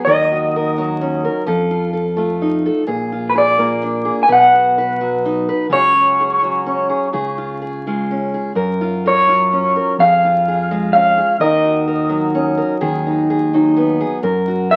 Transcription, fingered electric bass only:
0.07 1.27 D#2 medium
1.48 2.68 F2 medium
2.88 4.08 A#1 medium
4.29 5.50 B1 medium
5.69 6.92 C#2 medium
7.14 8.36 C#2 medium
8.56 9.78 F#2 medium
9.99 11.20 F2 medium
11.40 12.61 D#2 medium
12.82 14.02 D#2 medium
14.23 14.76 F#2 medium

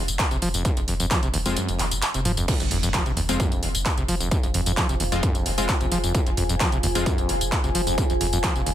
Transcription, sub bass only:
0.08 0.19 F1 medium
0.31 0.42 F1 medium
0.42 0.54 F1 loud
0.54 0.65 F1 medium
0.77 0.87 F1 medium
0.88 0.99 F1 loud
1.00 1.11 F1 medium
1.23 1.33 F1 medium
1.34 1.45 F1 loud
1.46 1.56 F1 medium
1.69 1.79 F1 medium
1.79 1.91 F1 loud
1.91 2.02 F1 medium
2.14 2.25 F1 medium
2.25 2.37 F1 medium
2.37 2.48 F1 medium
2.60 2.71 F1 medium
2.71 2.83 F1 loud
2.83 2.94 F1 medium
3.06 3.16 F1 medium
3.17 3.28 F1 loud
3.29 3.40 F1 medium
3.52 3.62 F1 medium
3.63 3.74 F1 loud
3.75 3.85 F1 medium
3.98 4.08 F1 medium
4.09 4.20 F1 loud
4.21 4.31 F1 medium
4.43 4.54 F1 medium
4.54 4.66 F1 loud
4.66 4.77 F1 medium
4.89 5.00 F1 medium
5.00 5.12 F1 loud
5.12 5.23 F1 medium
5.35 5.45 F1 medium
5.46 5.57 F1 medium
5.58 5.69 F1 medium
5.81 5.91 F1 medium
5.92 6.03 F1 loud
6.04 6.14 F1 medium
6.27 6.37 F1 medium
6.37 6.49 F1 loud
6.49 6.60 F1 medium
6.72 6.83 F1 medium
6.83 6.95 F1 loud
6.95 7.06 F1 medium
7.18 7.28 F1 medium
7.29 7.40 F1 loud
7.41 7.52 F1 medium
7.64 7.74 F1 medium
7.75 7.86 F1 medium
7.87 7.98 F1 medium
8.10 8.20 F1 medium
8.21 8.32 F1 loud
8.33 8.43 F1 medium
8.56 8.66 F1 medium
8.67 8.74 F1 loud

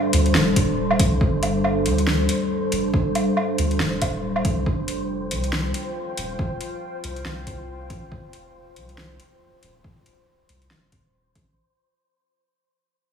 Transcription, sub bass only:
0.13 0.33 D2 loud
0.35 1.01 D1 medium
0.99 1.20 C2 medium
1.21 1.87 G1 loud
1.86 2.28 D2 loud
2.72 3.14 F1 medium
3.58 3.79 D2 loud
3.80 4.46 D1 medium
4.45 4.65 C2 medium
4.66 5.33 F1 loud
5.31 5.73 C2 loud
6.17 6.59 D#1 medium
7.04 7.24 C2 loud
7.25 7.92 C2 medium
7.90 8.10 A1 medium
8.12 8.78 F1 medium
8.76 9.18 C2 loud
9.63 10.05 D#1 medium
10.49 10.72 C2 loud
10.71 11.37 D#1 medium
11.35 11.56 A1 medium

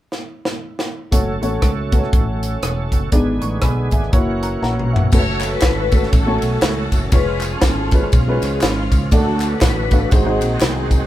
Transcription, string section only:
5.12 5.52 F#4 medium
5.12 6.08 A4 medium
5.12 5.50 C#5 loud
5.52 6.12 F#4 medium
5.52 6.08 B4 loud
6.13 6.61 C#4 medium
6.13 6.61 F#4 medium
6.13 6.50 A4 loud
6.53 6.62 A4 medium
6.62 7.09 A3 medium
6.62 7.09 C#4 medium
6.62 7.02 F#4 loud
7.13 7.51 F4 medium
7.13 8.08 G#4 medium
7.13 7.50 B4 loud
7.52 8.12 C#4 medium
7.52 8.11 F4 medium
7.52 8.08 A4 loud
8.12 8.62 C#4 medium
8.12 8.62 F4 medium
8.12 8.51 G#4 loud
8.52 8.61 G#4 medium
8.63 9.09 G#3 medium
8.63 9.09 C#4 medium
8.63 9.03 F4 loud
9.13 9.52 D4 medium
9.13 9.52 F#4 medium
9.13 9.50 A4 loud
9.53 10.08 D4 medium
9.53 10.08 F#4 medium
9.53 10.13 B4 loud
10.13 10.63 C4 medium
10.13 10.63 D#4 medium
10.13 10.50 G#4 loud
10.54 10.62 F#4 medium
10.64 11.07 C4 medium
10.64 11.07 D#4 medium
10.64 11.03 G#4 loud

